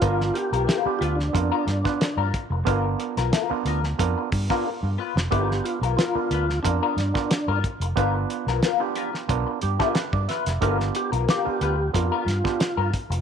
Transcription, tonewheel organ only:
\new Staff \with { instrumentName = "Tonewheel organ" } { \time 4/4 \key g \mixolydian \tempo 4 = 91 f'8 g'4 f'16 d'4.~ d'16 r8 | r1 | g'8 f'8 f'4 d'4. r8 | r1 |
ais'8 g'8 g'4 f'4. r8 | }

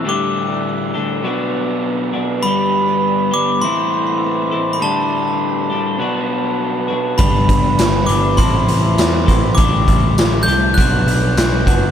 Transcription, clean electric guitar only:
\new Staff \with { instrumentName = "Clean electric guitar" } { \time 4/4 \key d \mixolydian \tempo 4 = 101 <a, d g d' g'>4. <a, d g d' g'>8 <b, fis b d' fis'>4. <b, fis b d' fis'>8 | <g, d g b d' g'>4. <g, d g b d' g'>8 <a, e c' e' a'>4. <a, e c' e' a'>8 | <a, d g d' g'>4. <a, d g d' g'>8 <b, fis b d' fis'>4. <b, fis b d' fis'>8 | <g, d g b d' g'>4. <g, d g b d' g'>8 <a, e c' e' a'>4. <a, e c' e' a'>8 |
<a, d g d' g'>4. <a, d g d' g'>8 <b, fis b d' fis'>4. <b, fis b d' fis'>8 | }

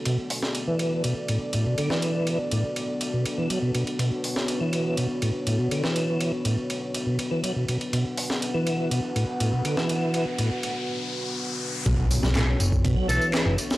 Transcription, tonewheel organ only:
\new Staff \with { instrumentName = "Tonewheel organ" } { \clef bass \time 4/4 \key b \minor \tempo 4 = 122 b,16 r4 e8. b,16 r16 a,16 r16 a,16 b,16 d16 e16~ | e8. r16 a,16 r4 b,16 r16 e16 fis16 b,16 b,16 r16 | b,16 r4 e8. b,16 r16 a,16 r16 a,16 b,16 d16 e16~ | e8. r16 a,16 r4 b,16 r16 e16 fis16 b,16 b,16 r16 |
b,16 r4 e8. b,16 r16 a,16 r16 a,16 b,16 d16 e16~ | e8. r16 a,16 r2 r8. | b,16 r8 fis16 a,16 r8. b,16 fis16 e4 r8 | }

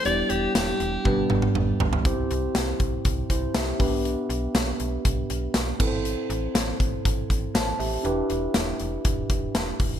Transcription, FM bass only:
\new Staff \with { instrumentName = "FM bass" } { \clef bass \time 4/4 \key c \major \tempo 4 = 120 e,,8 e,,8 e,,8 e,,8 g,,8 g,,8 g,,8 g,,8 | c,8 c,8 c,8 b,,8 c,8 c,8 c,8 b,,8~ | b,,8 b,,8 b,,8 b,,8 b,,8 b,,8 b,,8 a,,8~ | a,,8 a,,8 a,,8 a,,8 a,,8 a,,8 a,,8 a,,8 |
e,,8 e,,8 e,,8 f,,8 e,,8 e,,8 e,,8 e,,8 | }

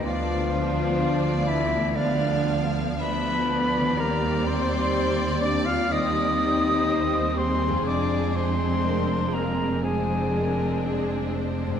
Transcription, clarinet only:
\new Staff \with { instrumentName = "Clarinet" } { \time 4/4 \key c \minor \tempo 4 = 61 f'4. e'8 d'8. r16 b'4 | bes'8 c''4 d''16 f''16 ees''4. c''8 | d''8 c''4 bes'8 aes'4 r4 | }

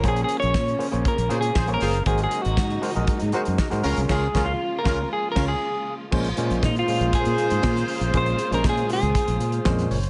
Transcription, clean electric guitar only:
\new Staff \with { instrumentName = "Clean electric guitar" } { \time 4/4 \key bes \minor \tempo 4 = 118 \tuplet 3/2 { aes'8 aes'8 des''8~ } des''8 r8 \tuplet 3/2 { bes'4 aes'8~ aes'8 bes'4 } | \tuplet 3/2 { aes'8 aes'8 ges'8~ } ges'8 r2 r8 | \tuplet 3/2 { aes'4 f'8~ f'8 bes'4 aes'8 bes'8 aes'8~ } aes'8 r8 | r4 ees'16 f'8. aes'2 |
c''8. bes'16 aes'8 aes'2 r8 | }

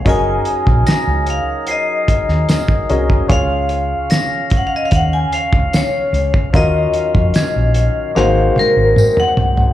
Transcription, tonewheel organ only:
\new Staff \with { instrumentName = "Tonewheel organ" } { \time 4/4 \key des \major \tempo 4 = 74 << { bes'1 | f''1 | ges1 | } \\ { <ges ees' aes'>1 | <des des'>1 | <ees des'>2 <aes c'>2 | } >> }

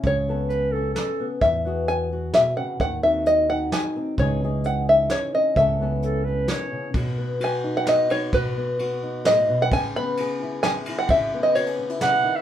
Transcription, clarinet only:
\new Staff \with { instrumentName = "Clarinet" } { \time 3/4 \key b \mixolydian \tempo 4 = 130 r4 b'8 a'8 a'8. r16 | r2. | r2. | r2. |
r4 a'8 b'8 cis''4 | r2. | r2. | r2. |
r2 fis''8. e''16 | }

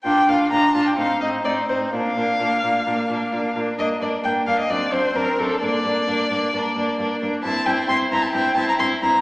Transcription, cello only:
\new Staff \with { instrumentName = "Cello" } { \clef bass \time 4/4 \key g \minor \tempo 4 = 131 bes,8 bes,8 bes,8 bes,8 a,8 a,8 a,8 a,8 | bes,8 bes,8 bes,8 bes,8 bes,8 bes,8 bes,8 bes,8 | g,8 g,8 g,8 g,8 fis,8 fis,8 fis,8 fis,8 | g,8 g,8 g,8 g,8 g,8 g,8 g,8 g,8 |
\key c \mixolydian g,8 g,8 g,8 g,8 g,8 g,8 g,8 g,8 | }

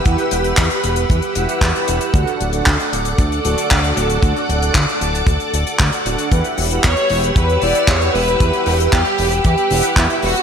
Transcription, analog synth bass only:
\new Staff \with { instrumentName = "Analog synth bass" } { \clef bass \time 4/4 \key e \minor \tempo 4 = 115 e,8 e,,8 e,8 e,,8 e,8 e,,8 e,8 e,,8 | d,8 d,,8 d,8 d,,8 d,8 d,,8 d,8 d,,8 | d,8 d,,8 d,8 d,,8 d,8 d,,8 d,8 d,,8 | e,8 e,,8 e,8 e,,8 e,8 e,,8 e,8 e,,8 |
e,8 e,,8 e,8 e,,8 e,8 e,,8 e,8 e,,8 | }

